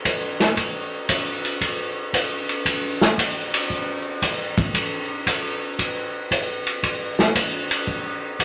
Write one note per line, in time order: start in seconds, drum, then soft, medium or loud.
0.05 kick soft
0.05 hi-hat pedal medium
0.05 ride medium
0.40 snare soft
0.40 ride soft
0.57 kick soft
0.57 ride medium
1.09 kick soft
1.09 hi-hat pedal medium
1.09 ride medium
1.45 ride soft
1.61 kick soft
1.61 ride medium
2.13 kick soft
2.13 hi-hat pedal medium
2.13 ride medium
2.49 ride soft
2.65 kick soft
2.65 ride medium
3.01 snare medium
3.18 kick soft
3.18 hi-hat pedal medium
3.18 ride medium
3.54 ride medium
3.70 kick soft
4.22 kick soft
4.22 hi-hat pedal medium
4.22 ride medium
4.58 kick medium
4.58 ride soft
4.74 kick soft
4.74 ride medium
5.27 kick soft
5.27 hi-hat pedal medium
5.27 ride medium
5.79 kick soft
5.79 ride medium
6.31 kick soft
6.31 hi-hat pedal medium
6.31 ride medium
6.67 ride medium
6.83 kick soft
6.83 ride medium
7.19 snare medium
7.35 kick soft
7.35 hi-hat pedal medium
7.35 ride medium
7.71 ride medium
7.87 kick soft
8.39 kick soft
8.39 hi-hat pedal medium
8.39 ride medium